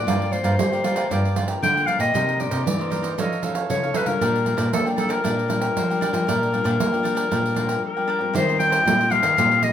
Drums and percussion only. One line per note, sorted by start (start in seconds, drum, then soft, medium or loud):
0.08 pandeiro medium
0.22 pandeiro soft
0.33 pandeiro soft
0.44 pandeiro medium
0.59 pandeiro medium
0.73 pandeiro soft
0.84 pandeiro medium
0.96 pandeiro medium
1.11 pandeiro medium
1.25 pandeiro soft
1.36 pandeiro medium
1.48 pandeiro medium
1.63 pandeiro medium
1.77 pandeiro soft
1.88 pandeiro medium
2.00 pandeiro medium
2.15 pandeiro medium
2.29 pandeiro soft
2.40 pandeiro soft
2.51 pandeiro medium
2.67 pandeiro medium
2.81 pandeiro soft
2.92 pandeiro medium
3.04 pandeiro medium
3.18 pandeiro medium
3.32 pandeiro soft
3.43 pandeiro medium
3.55 pandeiro medium
3.70 pandeiro medium
3.84 pandeiro soft
3.94 pandeiro medium
4.06 pandeiro medium
4.22 pandeiro medium
4.35 pandeiro soft
4.46 pandeiro soft
4.58 pandeiro medium
4.73 pandeiro medium
4.87 pandeiro soft
4.98 pandeiro medium
5.10 pandeiro medium
5.25 pandeiro medium
5.39 pandeiro soft
5.50 pandeiro medium
5.62 pandeiro medium
5.77 pandeiro medium
5.91 pandeiro soft
6.02 pandeiro medium
6.14 pandeiro medium
6.29 pandeiro medium
6.43 pandeiro soft
6.54 pandeiro soft
6.65 pandeiro medium
6.80 pandeiro medium
6.94 pandeiro soft
7.05 pandeiro medium
7.17 pandeiro medium
7.32 pandeiro medium
7.45 pandeiro soft
7.56 pandeiro medium
7.69 pandeiro medium
8.35 pandeiro medium
8.49 pandeiro soft
8.60 pandeiro medium
8.72 pandeiro medium
8.87 pandeiro medium
9.01 pandeiro soft
9.12 pandeiro medium
9.23 pandeiro medium
9.38 pandeiro medium
9.51 pandeiro soft
9.63 pandeiro medium